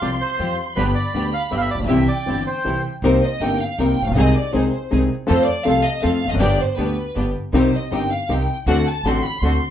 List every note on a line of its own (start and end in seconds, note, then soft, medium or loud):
0.00 0.18 C2 soft
0.00 0.18 C3 soft
0.00 0.18 F3 soft
0.00 0.18 G3 soft
0.00 0.17 C4 soft
0.00 0.18 C4 soft
0.00 0.18 F4 soft
0.00 0.18 G4 soft
0.00 0.10 D5 medium
0.00 0.77 C6 medium
0.21 0.56 C5 medium
0.38 0.55 F2 medium
0.38 0.56 F2 soft
0.38 0.56 F3 soft
0.38 0.56 G3 soft
0.38 0.54 C4 soft
0.38 0.56 C4 soft
0.38 0.55 F4 soft
0.38 0.55 G4 soft
0.38 0.56 G4 soft
0.76 0.93 G1 medium
0.76 0.93 G2 medium
0.76 0.93 D3 medium
0.76 0.93 G3 medium
0.76 0.92 B3 medium
0.76 0.93 B3 medium
0.76 0.93 D4 medium
0.76 0.93 G4 medium
0.76 0.85 B4 medium
0.76 1.90 B5 medium
0.94 1.30 D5 medium
1.14 1.30 D2 soft
1.14 1.31 D3 medium
1.14 1.30 G3 soft
1.14 1.30 B3 soft
1.14 1.30 D4 soft
1.14 1.30 G4 soft
1.14 1.31 G4 soft
1.34 1.42 F5 medium
1.51 1.67 G1 soft
1.51 1.68 G1 medium
1.51 1.67 G2 soft
1.51 1.67 D3 soft
1.51 1.67 G3 soft
1.51 1.67 B3 soft
1.51 1.68 D4 soft
1.51 1.67 G4 soft
1.51 1.68 G4 soft
1.51 1.54 E5 medium
1.58 1.70 E5 medium
1.58 1.62 F5 medium
1.71 1.80 A1 soft
1.71 1.79 D5 medium
1.79 1.84 A#1 medium
1.79 1.84 A#1 soft
1.84 1.89 B1 medium
1.84 2.08 E5 medium
1.88 2.05 C2 medium
1.88 2.06 C2 medium
1.88 2.05 C3 medium
1.88 2.05 E3 medium
1.88 2.05 G3 medium
1.88 2.05 C4 medium
1.88 2.05 E4 medium
1.88 2.05 G4 medium
1.88 2.85 G5 medium
2.08 2.44 D5 medium
2.26 2.43 G1 soft
2.26 2.43 G2 soft
2.26 2.43 E3 soft
2.26 2.43 G3 soft
2.26 2.43 C4 soft
2.26 2.44 E4 soft
2.26 2.43 G4 soft
2.26 2.44 G4 soft
2.47 2.82 C5 medium
2.65 2.81 C2 soft
2.65 2.81 C2 medium
2.65 2.81 C3 soft
2.65 2.81 E3 soft
2.65 2.81 G3 soft
2.65 2.81 C4 soft
2.65 2.82 C4 soft
2.65 2.82 E4 soft
2.65 2.81 G4 soft
2.65 2.82 G4 soft
3.02 3.19 C2 medium
3.02 3.20 C3 medium
3.02 3.19 D#3 medium
3.02 3.19 A#3 medium
3.02 3.19 C4 medium
3.02 3.20 C4 medium
3.02 3.20 D#4 medium
3.02 3.20 G4 medium
3.02 3.20 A#4 medium
3.02 3.21 C5 medium
3.25 3.42 D#5 medium
3.40 3.57 G1 medium
3.40 3.57 G2 medium
3.40 3.57 D#3 soft
3.40 3.57 A#3 soft
3.40 3.57 C4 soft
3.40 3.57 D#4 soft
3.40 3.57 G4 soft
3.40 3.57 A#4 medium
3.40 3.61 G5 medium
3.60 3.79 F5 medium
3.79 3.95 C2 medium
3.79 3.95 C2 soft
3.79 3.95 C3 medium
3.79 3.95 D#3 soft
3.79 3.95 A#3 soft
3.79 3.95 C4 soft
3.79 3.95 D#4 soft
3.79 3.95 G4 medium
3.79 3.95 A#4 medium
3.79 4.04 G5 medium
4.02 4.06 A1 soft
4.02 4.07 A1 soft
4.02 4.17 F5 medium
4.07 4.12 A#1 medium
4.07 4.11 A#1 medium
4.11 4.16 B1 medium
4.11 4.15 B1 medium
4.16 4.32 C2 medium
4.16 4.32 C3 medium
4.16 4.32 D#3 medium
4.16 4.32 G#3 medium
4.16 4.32 C4 medium
4.16 4.32 D#4 medium
4.16 4.32 G#4 medium
4.16 4.33 G#4 medium
4.16 4.34 D#5 medium
4.34 4.54 D5 medium
4.53 4.69 C2 medium
4.53 4.70 C2 medium
4.53 4.69 C3 medium
4.53 4.69 D#3 soft
4.53 4.69 G#3 soft
4.53 4.69 C4 soft
4.53 4.70 C4 soft
4.53 4.70 D#4 soft
4.53 4.69 G#4 medium
4.53 4.70 G#4 medium
4.53 4.91 C5 medium
4.91 5.07 C2 soft
4.91 5.08 C2 medium
4.91 5.07 C3 medium
4.91 5.07 D#3 soft
4.91 5.07 G#3 soft
4.91 5.07 C4 soft
4.91 5.07 D#4 soft
4.91 5.07 G#4 soft
5.27 5.44 F2 medium
5.27 5.45 F2 medium
5.27 5.44 F3 medium
5.27 5.44 A3 medium
5.27 5.44 C4 medium
5.27 5.44 F4 medium
5.27 5.44 A4 medium
5.27 5.46 C5 medium
5.46 5.66 D5 medium
5.64 5.81 C2 medium
5.64 5.82 C2 medium
5.64 5.82 C3 medium
5.64 5.81 F3 soft
5.64 5.82 A3 soft
5.64 5.82 C4 soft
5.64 5.82 F4 soft
5.64 5.81 A4 medium
5.64 5.82 A4 medium
5.64 5.84 F5 loud
5.85 6.04 D#5 medium
6.02 6.19 F2 medium
6.02 6.20 F2 medium
6.02 6.19 F3 medium
6.02 6.19 A3 soft
6.02 6.19 C4 soft
6.02 6.19 C4 medium
6.02 6.19 F4 soft
6.02 6.19 A4 medium
6.02 6.28 F5 medium
6.25 6.32 E1 soft
6.25 6.31 E2 soft
6.25 6.41 D#5 medium
6.30 6.36 F1 medium
6.30 6.36 F2 medium
6.34 6.41 F#1 medium
6.34 6.40 F#2 medium
6.40 6.57 G1 medium
6.40 6.57 G2 medium
6.40 6.56 D3 medium
6.40 6.56 G3 medium
6.40 6.56 B3 medium
6.40 6.57 B3 medium
6.40 6.56 D4 medium
6.40 6.56 G4 medium
6.40 6.57 G4 medium
6.40 6.58 D5 medium
6.60 6.79 C5 medium
6.77 6.94 D2 medium
6.77 6.95 D3 medium
6.77 6.94 G3 soft
6.77 6.94 B3 soft
6.77 6.95 B3 soft
6.77 6.94 D4 soft
6.77 6.94 G4 medium
6.77 6.95 G4 medium
6.77 7.17 B4 medium
7.15 7.32 G1 medium
7.15 7.32 G1 soft
7.15 7.32 G2 medium
7.15 7.32 D3 soft
7.15 7.32 G3 soft
7.15 7.32 B3 soft
7.15 7.33 B3 soft
7.15 7.32 D4 soft
7.15 7.32 G4 soft
7.53 7.70 C2 medium
7.53 7.70 C3 medium
7.53 7.70 D#3 medium
7.53 7.70 G3 medium
7.53 7.70 C4 medium
7.53 7.70 D#4 medium
7.53 7.70 G4 medium
7.53 7.73 C5 medium
7.76 7.94 D#5 medium
7.91 8.08 G1 medium
7.91 8.08 G2 medium
7.91 8.08 D#3 soft
7.91 8.08 G3 soft
7.91 8.08 C4 soft
7.91 8.08 D#4 soft
7.91 8.08 G4 medium
7.91 8.12 G5 medium
8.11 8.30 F5 medium
8.29 8.45 C2 medium
8.29 8.45 C3 medium
8.29 8.45 D#3 soft
8.29 8.46 G3 soft
8.29 8.45 C4 soft
8.29 8.46 C4 soft
8.29 8.46 D#4 soft
8.29 8.46 G4 medium
8.29 8.56 G5 medium
8.66 8.83 D2 medium
8.66 8.84 D3 medium
8.66 8.83 A3 medium
8.66 8.83 C4 medium
8.66 8.84 D4 medium
8.66 8.83 F#4 medium
8.66 8.84 F#4 medium
8.66 8.85 F#5 loud
8.86 9.05 A5 medium
9.04 9.20 A1 medium
9.04 9.21 A1 medium
9.04 9.21 A2 medium
9.04 9.21 D3 soft
9.04 9.21 A3 soft
9.04 9.21 C4 medium
9.04 9.21 C4 soft
9.04 9.21 D4 soft
9.04 9.21 F#4 medium
9.04 9.24 C6 loud
9.24 9.42 B5 medium
9.40 9.58 D2 medium
9.40 9.58 D3 medium
9.40 9.58 A3 soft
9.40 9.58 C4 soft
9.40 9.59 D4 soft
9.40 9.58 F#4 medium
9.40 9.59 F#4 medium
9.40 9.66 C6 medium